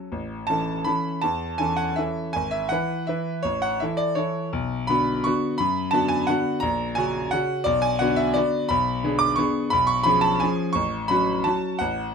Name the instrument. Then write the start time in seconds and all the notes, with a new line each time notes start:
grand piano
0.12 A1
0.47 E3 C#4 A4 A5
0.84 E3 C#4 A4 B5
1.22 E2 A5
1.58 E3 C#4 A4 G#5
1.76 F#5
1.96 E3 C#4 A4 E5
2.33 G#1 G#5
2.51 E5
2.69 E3 E4 B4 F#5
3.07 E3 E4 B4 E5
3.43 A1 C#5
3.62 F#5
3.80 E3 E4 A4 E5
3.97 D5
4.15 E3 E4 A4 C#5
4.53 B1
4.87 D3 B3 F#4 B5
5.24 D3 B3 F#4 C#6
5.58 F#2 B5
5.91 D3 B3 F#4 A5
6.08 G#5
6.27 D3 B3 F#4 F#5
6.60 A#1 A#5
6.95 C#3 C#4 F#4 G#5
7.31 C#3 C#4 F#4 F#5
7.64 B1 D5
7.82 G#5
7.99 D3 B3 F#4 F#5
8.16 E5
8.34 D3 B3 F#4 D5
8.69 B1 B5
9.03 D3 B3 G#4
9.19 D6
9.36 D3 B3 G#4 C#6
9.70 B1 B5
9.87 C#6
10.03 F3 C#4 G#4 B5
10.21 A5
10.40 F3 C#4 G#4 G#5
10.73 A1 C#6
11.08 F#3 C#4 F#4 B5
11.44 F#3 C#4 F#4 A5
11.79 A1 F#5